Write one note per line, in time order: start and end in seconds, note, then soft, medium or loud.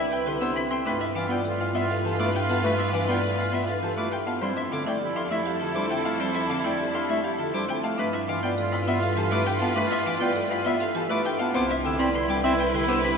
0.00 0.69 C2 medium
0.00 0.16 E4 medium
0.00 0.66 E4 medium
0.00 0.66 B4 medium
0.00 0.16 E5 loud
0.09 0.31 E4 medium
0.09 0.30 B4 medium
0.09 0.22 G5 medium
0.26 0.37 D3 medium
0.26 0.45 G4 medium
0.26 0.46 B4 medium
0.26 0.37 C6 medium
0.40 0.52 B3 medium
0.40 0.60 D4 loud
0.40 0.62 E4 soft
0.40 0.60 C5 loud
0.40 0.52 E6 loud
0.56 0.75 C4 medium
0.56 0.67 B5 medium
0.70 0.81 C4 medium
0.70 0.90 E4 medium
0.70 0.90 G5 medium
0.70 0.82 C6 medium
0.85 4.26 G2 medium
0.85 0.97 A3 medium
0.85 1.05 D4 loud
0.85 4.23 F4 medium
0.85 1.08 F4 soft
0.85 4.23 B4 medium
0.85 1.05 B4 medium
0.85 0.97 B5 loud
1.00 1.20 E4 medium
1.00 1.11 E5 medium
1.15 1.27 E3 medium
1.15 1.34 D4 medium
1.15 1.39 F4 medium
1.15 1.35 F5 medium
1.15 1.26 D6 medium
1.29 1.41 B3 medium
1.29 1.49 F4 loud
1.29 1.50 D5 medium
1.29 1.41 G5 loud
1.45 1.70 F4 medium
1.45 1.64 A4 medium
1.60 1.79 E4 medium
1.60 1.79 F5 medium
1.74 1.85 B3 medium
1.74 1.94 F4 medium
1.74 1.86 E5 medium
1.74 1.94 E5 loud
1.80 2.01 F4 medium
1.90 2.09 A4 medium
1.90 2.01 F5 medium
2.04 2.15 E3 medium
2.04 2.24 G4 medium
2.04 2.24 A4 medium
2.04 2.16 A5 medium
2.11 2.32 F4 medium
2.19 2.30 A3 medium
2.19 2.39 E4 medium
2.19 2.39 B4 medium
2.19 2.30 D6 loud
2.34 2.54 D4 medium
2.34 2.45 G5 medium
2.42 2.63 F4 medium
2.49 2.60 B3 medium
2.49 2.68 F4 medium
2.49 2.68 F5 medium
2.49 2.60 A5 medium
2.64 2.75 A3 medium
2.64 2.83 D4 medium
2.64 2.83 B4 medium
2.64 2.75 B5 medium
2.73 2.95 F4 medium
2.79 2.98 E4 medium
2.79 2.90 E5 medium
2.93 3.04 E3 medium
2.93 3.13 D4 medium
2.93 3.13 F5 medium
2.93 3.05 D6 medium
3.04 3.25 F4 medium
3.08 3.19 B3 medium
3.08 3.28 F4 medium
3.08 3.27 D5 medium
3.08 3.20 G5 medium
3.24 3.43 A4 medium
3.35 3.56 F4 medium
3.35 3.57 F5 medium
3.39 3.57 E4 medium
3.52 3.64 B3 medium
3.52 3.72 F4 medium
3.52 3.64 E5 medium
3.52 3.72 E5 medium
3.65 3.87 F4 soft
3.65 3.87 A4 medium
3.65 3.79 F5 medium
3.82 3.93 E3 medium
3.82 4.02 G4 medium
3.82 4.02 A4 medium
3.82 3.94 A5 medium
3.96 4.08 A3 medium
3.96 4.17 E4 medium
3.96 4.18 F4 soft
3.96 4.17 B4 medium
3.96 4.08 D6 medium
4.12 4.32 D4 medium
4.12 4.23 G5 medium
4.26 4.38 B3 medium
4.26 4.46 F4 medium
4.26 4.46 F5 medium
4.26 4.38 A5 medium
4.41 7.82 F2 medium
4.41 4.53 G3 medium
4.41 4.61 C4 medium
4.41 7.79 E4 medium
4.41 4.64 E4 soft
4.41 7.80 A4 medium
4.41 4.61 C5 medium
4.41 4.53 C6 medium
4.57 4.76 D4 medium
4.57 4.68 E5 medium
4.72 4.83 D3 medium
4.72 4.91 C4 medium
4.72 4.95 E4 medium
4.72 4.91 F5 medium
4.72 4.83 D6 medium
4.86 4.97 A3 medium
4.86 5.06 E4 medium
4.86 5.06 D5 medium
4.86 4.98 G5 medium
5.01 5.25 E4 medium
5.01 5.21 G4 medium
5.16 5.35 D4 medium
5.16 5.35 F5 medium
5.16 5.27 C6 medium
5.30 5.42 A3 medium
5.30 5.50 E4 medium
5.30 5.56 E4 medium
5.30 5.50 E5 loud
5.30 5.42 E5 medium
5.45 5.65 G4 medium
5.45 5.57 F5 medium
5.60 5.72 D3 medium
5.60 5.80 F4 medium
5.60 5.80 A4 medium
5.60 5.72 A5 medium
5.65 5.87 E4 medium
5.75 5.87 G3 medium
5.75 5.95 D4 medium
5.75 5.95 C5 medium
5.75 5.86 D6 medium
5.90 6.10 C4 medium
5.90 6.01 G5 medium
5.97 6.19 E4 medium
6.05 6.16 A3 medium
6.05 6.25 E4 medium
6.05 6.24 F5 medium
6.05 6.16 A5 medium
6.20 6.31 G3 medium
6.20 6.39 C4 medium
6.20 6.39 C5 medium
6.20 6.31 C6 loud
6.28 6.50 E4 medium
6.34 6.54 D4 medium
6.34 6.46 E5 medium
6.49 6.61 D3 medium
6.49 6.69 C4 medium
6.49 6.69 F5 medium
6.49 6.61 D6 medium
6.59 6.81 E4 medium
6.64 6.76 A3 medium
6.64 6.84 E4 loud
6.64 6.84 D5 medium
6.64 6.75 G5 medium
6.79 6.99 G4 medium
6.90 7.12 E4 medium
6.90 7.05 C6 medium
6.94 7.14 D4 medium
6.94 7.14 F5 medium
7.09 7.21 A3 loud
7.09 7.28 E4 medium
7.09 7.20 E5 medium
7.09 7.29 E5 loud
7.22 7.43 E4 medium
7.22 7.43 G4 medium
7.22 7.35 F5 medium
7.39 7.50 D3 medium
7.39 7.58 F4 medium
7.39 7.58 A4 medium
7.39 7.50 A5 medium
7.53 7.65 G3 medium
7.53 7.73 D4 medium
7.53 7.75 E4 soft
7.53 7.73 C5 medium
7.53 7.65 D6 loud
7.68 7.88 C4 medium
7.68 7.80 G5 medium
7.83 7.95 A3 medium
7.83 8.03 E4 medium
7.83 8.03 F5 medium
7.83 7.94 A5 medium
7.98 11.39 G2 medium
7.98 8.10 A3 medium
7.98 8.17 D4 medium
7.98 11.36 F4 medium
7.98 8.21 F4 soft
7.98 11.36 B4 medium
7.98 8.18 B4 medium
7.98 8.09 B5 loud
8.13 8.32 E4 medium
8.13 8.24 E5 medium
8.28 8.39 E3 medium
8.28 8.47 D4 medium
8.28 8.51 F4 medium
8.28 8.48 F5 medium
8.28 8.39 D6 medium
8.42 8.54 B3 medium
8.42 8.62 F4 loud
8.42 8.62 D5 loud
8.42 8.54 G5 loud
8.58 8.83 F4 medium
8.58 8.77 A4 medium
8.72 8.92 E4 medium
8.72 8.92 F5 medium
8.72 8.83 B5 medium
8.87 8.98 B3 loud
8.87 9.07 F4 loud
8.87 8.98 E5 medium
8.87 9.07 E5 loud
8.92 9.13 F4 medium
9.02 9.22 A4 medium
9.02 9.13 F5 medium
9.16 9.28 E3 medium
9.16 9.36 G4 medium
9.16 9.36 A4 medium
9.16 9.28 A5 medium
9.23 9.44 F4 medium
9.31 9.43 A3 medium
9.31 9.51 E4 loud
9.31 9.51 B4 loud
9.31 9.42 D6 loud
9.46 9.66 D4 medium
9.46 9.57 G5 medium
9.54 9.76 F4 medium
9.61 9.73 B3 medium
9.61 9.81 F4 medium
9.61 9.81 F5 medium
9.61 9.72 A5 medium
9.76 9.87 A3 medium
9.76 9.96 D4 loud
9.76 9.96 B4 loud
9.76 9.87 B5 loud
9.85 10.06 F4 medium
9.91 10.10 E4 medium
9.91 10.02 E5 medium
10.06 10.17 E3 medium
10.06 10.25 D4 medium
10.06 10.25 F5 medium
10.06 10.17 D6 medium
10.16 10.37 F4 medium
10.21 10.32 B3 loud
10.21 10.40 F4 loud
10.21 10.40 D5 loud
10.21 10.32 G5 loud
10.36 10.55 A4 medium
10.47 10.70 E4 medium
10.47 10.69 F4 medium
10.47 10.70 F5 medium
10.47 10.62 B5 medium
10.65 10.77 B3 loud
10.65 10.85 F4 loud
10.65 10.77 E5 loud
10.65 10.85 E5 loud
10.78 11.00 F4 medium
10.78 11.00 A4 medium
10.78 10.91 F5 medium
10.95 11.06 E3 medium
10.95 11.14 G4 medium
10.95 11.15 A4 medium
10.95 11.06 A5 medium
11.09 11.21 A3 loud
11.09 11.29 E4 loud
11.09 11.31 F4 soft
11.09 11.29 B4 loud
11.09 11.21 D6 loud
11.25 11.44 D4 medium
11.25 11.36 G5 medium
11.39 11.52 B3 medium
11.39 11.59 F4 medium
11.39 11.59 F5 medium
11.39 11.51 A5 medium
11.54 13.18 C2 medium
11.54 11.66 B3 loud
11.54 11.74 C4 loud
11.54 11.77 E4 medium
11.54 13.18 E4 medium
11.54 13.18 B4 medium
11.54 11.74 C5 loud
11.54 11.66 D6 loud
11.69 11.89 D4 medium
11.69 11.81 E5 medium
11.84 11.95 D3 medium
11.84 12.04 C4 medium
11.84 12.07 E4 medium
11.84 12.04 G5 medium
11.84 11.96 E6 medium
11.98 12.10 C4 loud
11.98 12.19 E4 loud
11.98 12.18 D5 loud
11.98 12.11 B5 loud
12.14 12.39 E4 medium
12.14 12.33 B4 medium
12.14 12.25 C6 medium
12.28 12.40 G3 medium
12.28 12.48 D4 medium
12.28 12.48 G5 medium
12.28 12.40 D6 medium
12.43 12.55 C4 loud
12.43 12.63 E4 loud
12.43 12.63 E5 loud
12.43 12.55 E5 loud
12.49 12.70 E4 medium
12.59 12.78 B4 medium
12.59 12.70 G5 medium
12.73 12.84 D3 medium
12.73 12.93 G4 medium
12.73 12.93 B4 medium
12.73 12.85 C6 medium
12.79 13.01 E4 medium
12.87 12.99 B3 loud
12.87 13.08 D4 loud
12.87 13.08 C5 loud
12.87 13.00 E6 loud
13.03 13.18 C4 medium
13.03 13.15 B5 medium
13.11 13.18 E4 loud